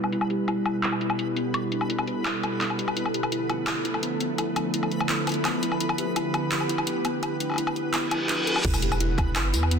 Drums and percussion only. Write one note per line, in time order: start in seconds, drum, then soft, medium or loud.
0.04 low woodblock soft
0.12 closed hi-hat medium
0.21 low woodblock medium
0.30 closed hi-hat medium
0.48 closed hi-hat medium
0.48 low woodblock soft
0.66 closed hi-hat soft
0.66 low woodblock medium
0.83 clap loud
0.83 closed hi-hat medium
0.92 low woodblock soft
1.01 closed hi-hat medium
1.10 low woodblock medium
1.19 closed hi-hat medium
1.36 closed hi-hat medium
1.54 closed hi-hat medium
1.54 low woodblock medium
1.72 closed hi-hat medium
1.81 low woodblock soft
1.90 closed hi-hat medium
1.99 low woodblock medium
2.07 closed hi-hat soft
2.25 clap loud
2.25 closed hi-hat medium
2.25 low woodblock soft
2.43 closed hi-hat medium
2.43 low woodblock medium
2.61 clap medium
2.61 closed hi-hat medium
2.70 low woodblock soft
2.79 closed hi-hat medium
2.88 low woodblock medium
2.97 closed hi-hat medium
3.06 low woodblock soft
3.14 closed hi-hat medium
3.23 low woodblock medium
3.32 closed hi-hat medium
3.50 closed hi-hat soft
3.50 low woodblock soft
3.67 clap loud
3.67 closed hi-hat medium
3.67 low woodblock medium
3.85 closed hi-hat medium
3.94 low woodblock soft
4.03 closed hi-hat medium
4.21 closed hi-hat medium
4.38 closed hi-hat medium
4.38 low woodblock soft
4.56 closed hi-hat medium
4.56 low woodblock medium
4.74 closed hi-hat medium
4.83 low woodblock soft
4.91 closed hi-hat soft
5.00 low woodblock medium
5.09 clap loud
5.09 closed hi-hat medium
5.27 closed hi-hat medium
5.27 low woodblock soft
5.29 closed hi-hat soft
5.32 closed hi-hat soft
5.34 closed hi-hat soft
5.45 clap medium
5.45 closed hi-hat medium
5.45 low woodblock medium
5.63 closed hi-hat medium
5.72 low woodblock soft
5.80 closed hi-hat medium
5.89 low woodblock medium
5.98 closed hi-hat medium
6.16 closed hi-hat medium
6.16 low woodblock soft
6.34 closed hi-hat soft
6.34 low woodblock medium
6.52 clap loud
6.52 closed hi-hat medium
6.60 low woodblock soft
6.69 closed hi-hat medium
6.78 low woodblock medium
6.87 closed hi-hat medium
7.05 closed hi-hat medium
7.05 low woodblock medium
7.23 closed hi-hat medium
7.23 low woodblock medium
7.40 closed hi-hat medium
7.50 low woodblock soft
7.52 low woodblock soft
7.54 low woodblock soft
7.56 closed hi-hat medium
7.56 low woodblock soft
7.67 low woodblock medium
7.76 closed hi-hat soft
7.94 clap loud
7.94 closed hi-hat medium
7.94 low woodblock medium
8.11 closed hi-hat medium
8.11 low woodblock medium
8.29 clap medium
8.29 closed hi-hat medium
8.47 closed hi-hat medium
8.56 low woodblock medium
8.65 kick loud
8.65 closed hi-hat medium
8.65 crash loud
8.74 tambourine medium
8.74 low woodblock medium
8.82 closed hi-hat medium
8.92 tambourine soft
8.92 low woodblock medium
9.00 closed hi-hat medium
9.18 kick medium
9.18 closed hi-hat soft
9.18 low woodblock medium
9.36 clap loud
9.36 closed hi-hat medium
9.36 tambourine medium
9.36 low woodblock medium
9.54 closed hi-hat medium
9.54 tambourine medium
9.63 low woodblock medium
9.71 closed hi-hat medium